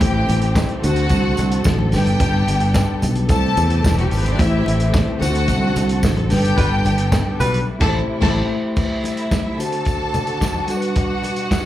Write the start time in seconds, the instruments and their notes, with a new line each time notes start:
Already playing: string section E3 A3 C4 G4
0.00 fingered electric bass A1, tine electric piano A3 E4 G4 C5, string section G4 G5, kick, closed hi-hat, muted conga
0.29 fingered electric bass A1, closed hi-hat, muted conga
0.42 closed hi-hat
0.55 kick, snare, tambourine, high conga
0.69 closed hi-hat
0.82 fingered electric bass D2, tine electric piano D3 D4 F#4 C5, string section D3 F#4 A4 F#5, closed hi-hat, tambourine
0.96 closed hi-hat
1.09 fingered electric bass C2, kick, closed hi-hat, tambourine
1.37 fingered electric bass C2, closed hi-hat, tambourine, muted conga
1.52 closed hi-hat
1.64 fingered electric bass A1, kick, snare, tambourine, high conga
1.79 high conga
1.92 fingered electric bass G1, tine electric piano G3 D4 G4 B4, string section G3 B3 G4 G5, snare, open hi-hat, tambourine
2.06 closed hi-hat, high conga
2.20 fingered electric bass G1, kick, closed hi-hat, tambourine, muted conga
2.48 fingered electric bass G1, closed hi-hat, muted conga
2.60 closed hi-hat
2.74 kick, snare, tambourine, high conga
3.02 fingered electric bass B1, closed hi-hat, tambourine, low conga
3.15 closed hi-hat
3.28 fingered electric bass C2, tine electric piano C3 A3 E4 C5, string section E3 A3 C4 G4 A4 A5, kick, closed hi-hat, tambourine, muted conga
3.57 fingered electric bass E2, closed hi-hat, tambourine, muted conga
3.70 closed hi-hat
3.84 fingered electric bass E1, kick, snare, tambourine, high conga
3.98 string section F#3 F#4, closed hi-hat, high conga
4.05 string section G3 G4
4.11 fingered electric bass G#1, string section A3 A4, open hi-hat, tambourine
4.18 string section B3 B4
4.24 string section C4 C5, closed hi-hat, high conga
4.32 string section D4 D5
4.38 fingered electric bass A1, string section E3 E4 E5, tine electric piano A3 E4 G4 C5, kick, closed hi-hat, tambourine, muted conga
4.66 fingered electric bass A1, closed hi-hat, muted conga
4.80 closed hi-hat
4.94 kick, snare, tambourine, high conga
5.18 fingered electric bass D2, tine electric piano D3 D4 F4 C5, string section D3 F#4 A4 F#5, closed hi-hat, tambourine
5.27 tine electric piano F#4
5.35 closed hi-hat
5.48 fingered electric bass C2, kick, closed hi-hat, tambourine
5.76 fingered electric bass C2, closed hi-hat, tambourine, muted conga
5.89 closed hi-hat
6.03 fingered electric bass A1, kick, snare, tambourine, high conga
6.16 closed hi-hat, high conga
6.29 fingered electric bass G1, tine electric piano G3 D4 G4 B4, string section G3 B3 G4 G5, snare, open hi-hat, tambourine
6.43 closed hi-hat, high conga
6.57 fingered electric bass G1, horn section G3 F#4 B4, kick, closed hi-hat, muted conga
6.85 fingered electric bass G1, closed hi-hat, tambourine, muted conga
6.98 closed hi-hat
7.12 kick, snare, tambourine, high conga
7.40 fingered electric bass B1, horn section G3 F#4 B4, closed hi-hat, tambourine, low conga
7.54 closed hi-hat
7.67 string section C3 A3 E4
7.79 fingered electric bass A1, tine electric piano A3 E4 G4, string section A4 A5, kick, snare, crash
7.88 tine electric piano C5
8.20 fingered electric bass A1, tine electric piano A3 E4 G4, string section A4 A5, kick, snare, crash
8.29 tine electric piano C5
8.75 string section C3 G3 A3 E4 E5, tine electric piano A3 E4 G4 B4, kick, crash, tambourine, muted conga
8.83 tine electric piano C5
9.04 closed hi-hat, tambourine, muted conga
9.17 closed hi-hat
9.31 kick, snare, tambourine, high conga
9.58 tine electric piano D3 D4 F#4 C5, string section D4 F#4 A4 A5, closed hi-hat, tambourine
9.72 closed hi-hat
9.85 kick, closed hi-hat, tambourine, muted conga
10.14 closed hi-hat, tambourine, muted conga, low conga
10.27 closed hi-hat
10.41 kick, snare, tambourine, high conga
10.54 high conga
10.67 string section B2 G3 F#4 F#5, tine electric piano G3 D4 F#4 A4, closed hi-hat, tambourine
10.77 tine electric piano B4
10.82 closed hi-hat
10.96 kick, closed hi-hat, muted conga
11.23 closed hi-hat, muted conga
11.36 closed hi-hat
11.51 kick, snare, tambourine, high conga